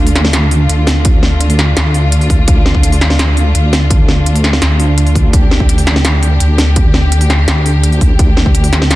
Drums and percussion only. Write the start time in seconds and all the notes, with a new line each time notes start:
0.07 open hi-hat
0.16 snare, closed hi-hat
0.25 snare
0.33 snare, closed hi-hat
0.51 open hi-hat
0.69 closed hi-hat
0.87 snare, open hi-hat
1.05 kick, closed hi-hat
1.23 snare
1.41 closed hi-hat
1.50 open hi-hat
1.59 snare, closed hi-hat
1.77 snare, closed hi-hat
1.94 open hi-hat
2.12 closed hi-hat
2.21 open hi-hat
2.30 kick, open hi-hat
2.48 kick, closed hi-hat
2.66 snare
2.75 kick
2.83 closed hi-hat
2.92 open hi-hat
3.01 snare, closed hi-hat
3.10 snare
3.19 snare, closed hi-hat
3.37 open hi-hat
3.55 closed hi-hat
3.73 snare, open hi-hat
3.90 kick, closed hi-hat
4.08 snare
4.26 closed hi-hat
4.36 open hi-hat
4.44 snare, closed hi-hat
4.53 snare
4.62 snare, closed hi-hat
4.80 open hi-hat
4.98 closed hi-hat
5.07 open hi-hat
5.15 kick, open hi-hat
5.33 kick, closed hi-hat
5.51 snare
5.60 kick
5.69 closed hi-hat
5.78 open hi-hat
5.87 snare, closed hi-hat
5.96 snare
6.05 snare, closed hi-hat
6.23 open hi-hat
6.40 closed hi-hat
6.58 snare, open hi-hat
6.76 kick, closed hi-hat
6.94 snare
7.12 closed hi-hat
7.21 open hi-hat
7.30 snare, closed hi-hat
7.48 snare, closed hi-hat
7.66 open hi-hat
7.84 closed hi-hat
7.92 open hi-hat
8.01 kick, open hi-hat
8.19 kick, closed hi-hat
8.37 snare
8.46 kick
8.55 closed hi-hat
8.64 open hi-hat
8.73 snare, closed hi-hat
8.82 snare
8.91 snare, closed hi-hat